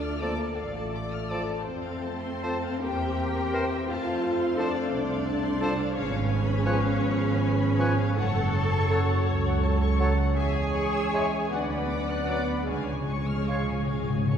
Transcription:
Already playing: D2 A3 D4 F4 A4 D5
0.04 F6
0.22 F3 A#3 A4 A#4 D5 A5 D6
0.40 A5
0.58 A1 A3 A4 F5
0.77 A5
0.95 D6
1.13 F6
1.30 F3 A4 D5 A5 D6
1.48 A5
1.66 F2 A3 C4 A4 C5
1.84 F5
2.03 A5
2.22 C6
2.43 F3 A4 C5 A5
2.63 F5
2.82 E2 A#3 G4 A#4 C5 G5
3.01 E5
3.19 G5
3.37 A#5
3.53 E3 A#4 C5 G5
3.71 E5
3.87 F2 A3 F4 A4 C5 F5 A5
4.06 F5
4.24 A5
4.42 C6
4.58 F3 D4 A4 C5 D5 A5
4.76 F5
4.92 C2 D4 C5 D5
5.10 F5
5.28 A5
5.45 C6
5.61 F3 A4 C5 A5
5.79 F5
5.95 G#1 F3 B3 C#4 G#4 B4 C#5 F5
6.13 F5
6.29 G#5
6.47 B5
6.64 F3 B4 C#5 G#5
6.81 F5
6.99 G#1 C#5
7.19 F5
7.39 G#5
7.59 B5
7.77 F3 B4 C#5 G#5
7.97 F5
8.17 F#1 F#3 C#4 A4 C#5 F#5 A5
8.36 F#5
8.55 A5
8.73 C#6
8.90 F#3 A4 C#5 F#5 A5
9.08 F#5
9.26 C#2 C#5
9.46 F#5
9.63 A5
9.82 C#6
10.00 F#3 A4 C#5 F#5 A5
10.19 F#5
10.36 E2 G#3 G#4 C#5 E5 G#5
10.56 G#5
10.76 C#6
10.95 E6
11.13 G#3 C#5 E5 C#6
11.32 G#5
11.51 D2 F#3 B3 D4 B4 D5 F#5
11.60 C#4
11.68 B3 B5
11.77 C#4
11.85 B3
11.90 C#4 D6
12.01 B3
12.09 C#4 F#6
12.17 B3
12.25 C#4 F#5
12.29 F#3 B3 B4 D5 D6
12.48 B5
12.68 C#2 C#3 F3 G#3 C#4 G#4 C#5 F5 G#5
12.77 C#3
12.89 C#3 G#5
13.00 C#3
13.08 C#3 C#6
13.16 C#3
13.23 C#3
13.29 C#3 F6
13.39 C#3
13.48 C#3 G#3 C#5 F5 C#6
13.55 C#3
13.63 C#3
13.69 C#3 G#5
13.79 C#3
13.87 G#1 C#3 F5
13.94 C#3
14.03 C#3
14.11 C#3 G#5
14.19 C#3
14.27 C#3 C#6
14.34 C#3

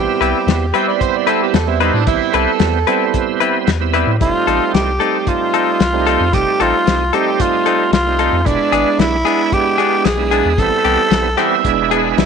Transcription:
Already playing: G3 B3 C4 E4 G4
0.21 C2 G3 C4 E4 B4, closed hi-hat
0.47 E2, snare, closed hi-hat
0.73 G3 B3 C4 E4 B4 G5, closed hi-hat
0.88 D5
1.01 C5, kick, closed hi-hat
1.16 D5
1.27 G3 C4 E4 A4 B4, closed hi-hat
1.42 G4
1.54 E2 A4, snare, closed hi-hat
1.67 G3 B3 C4 E4
1.80 G3 C4 D#4 E4 B4, closed hi-hat
1.94 A2 D4
2.06 A1 G3 B3 C4 E4, kick, closed hi-hat
2.33 C2 G3 C4 E4 A4 B4, closed hi-hat
2.60 E2, snare, closed hi-hat
2.87 G3 B3 C4 E4 B4, closed hi-hat
3.14 kick, closed hi-hat
3.40 G3 C4 E4 B4, closed hi-hat
3.67 E2, snare, closed hi-hat
3.80 G3 B3 C4 E4
3.94 G3 C4 E4 B4, closed hi-hat
4.07 A2
4.20 F1 G3 A3 C4 D#4 F4, kick, closed hi-hat
4.47 A1 C4 D#4 A4, closed hi-hat
4.74 C2 G4, snare, closed hi-hat
4.99 G3 A3 C4 D#4 A4, closed hi-hat
5.27 F4, kick, closed hi-hat
5.54 C4 D#4 A4, closed hi-hat
5.80 C2, snare, closed hi-hat
5.93 G3 A3 C4 D#4
6.07 C4 D#4 A4, closed hi-hat
6.20 F2
6.32 F1 G3 A3 C4 D#4 G4, kick, closed hi-hat
6.60 A1 C4 D#4 F4 A4, closed hi-hat
6.87 C2, snare, closed hi-hat
7.13 G3 A3 C4 D#4 G4 A4, closed hi-hat
7.40 F4, kick, closed hi-hat
7.66 C4 D#4 A4, closed hi-hat
7.92 C2 F4, snare, closed hi-hat
8.06 G3 A3 C4 D#4
8.19 C4 D#4 A4, closed hi-hat
8.32 F2
8.45 E1 G#3 B3 D4 E4, kick, closed hi-hat
8.72 G#1 B3 D4 G#4, closed hi-hat
8.99 B1 E4, snare, closed hi-hat
9.24 G#3 B3 D4 E4 G#4, closed hi-hat
9.52 G4, kick, closed hi-hat
9.78 B3 D4 G#4, closed hi-hat
10.05 B1 G#4, snare, closed hi-hat
10.17 G#3 B3 D4 E4
10.31 B3 D4 G#4, closed hi-hat
10.45 E2
10.57 A1 G3 B3 C4 E4 A4, kick, closed hi-hat
10.85 C2 E3 B3 C4 G4, closed hi-hat
11.11 B1, snare, closed hi-hat
11.37 E3 G3 B3 C4 E4 G4 G#4 C5 E5, closed hi-hat
11.64 E1 G#3 B3 D4 E4, kick, closed hi-hat
11.91 B3 D4 G#4, closed hi-hat
12.17 B1 E4, snare, closed hi-hat

